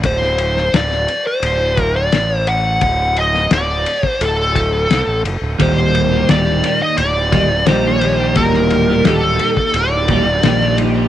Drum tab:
RD |x-x-x-x-x-x-x-x-|x-x-x-x-x-x-x-x-|x-x-x-x-x-x-x-x-|x-x-x-x-x-x-x-x-|
SD |-o-ooo------o---|---oo-------o---|----o-------o---|-o--o-------oo--|
BD |o---------o-----|o------o--o-----|o---------o-----|o------o--o-----|